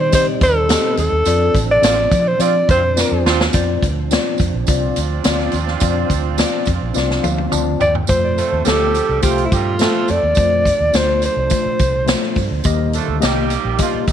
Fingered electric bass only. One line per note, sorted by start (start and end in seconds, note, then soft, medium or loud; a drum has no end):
0.00 0.29 D#3 loud
0.42 0.74 D#2 loud
0.98 1.09 D#2 medium
1.12 1.23 D#2 medium
1.26 1.48 F2 loud
1.55 1.77 A1 medium
1.82 2.05 A1 medium
2.12 2.34 F3 loud
2.39 2.62 F3 loud
2.69 3.02 F2 medium
3.11 3.22 F2 medium
3.25 3.47 D#2 medium
3.54 3.76 F2 loud
3.83 4.15 D2 medium
4.40 4.50 F2 medium
4.54 4.65 A#1 medium
4.68 4.90 C2 medium
4.97 5.18 D2 medium
5.25 5.47 D2 medium
5.53 5.75 D#2 medium
5.82 6.04 F2 loud
6.10 6.43 D2 medium
6.67 6.78 F2 medium
6.81 6.92 A#1 medium
6.96 7.18 C2 medium
7.24 7.46 D2 medium
7.53 7.75 D2 medium
7.81 8.03 D#2 medium
8.09 8.42 F2 loud
8.52 8.63 D#2 medium
8.66 8.99 D2 medium
9.09 9.20 C2 medium
9.23 9.45 C2 medium
9.52 9.85 G2 medium
10.10 10.20 F2 medium
10.23 10.34 D#2 medium
10.38 10.70 F2 loud
10.80 10.91 D#2 medium
10.94 11.27 D2 medium
11.37 11.48 C2 medium
11.66 muted fingered electric bass stroke soft
11.80 12.13 C2 medium
12.37 12.48 G2 medium
12.51 12.62 D2 medium
12.65 12.98 D#2 medium
13.08 13.19 D2 medium
13.22 13.55 C2 medium
13.65 13.76 A#1 medium
13.94 muted fingered electric bass stroke soft
14.08 14.12 A#1 medium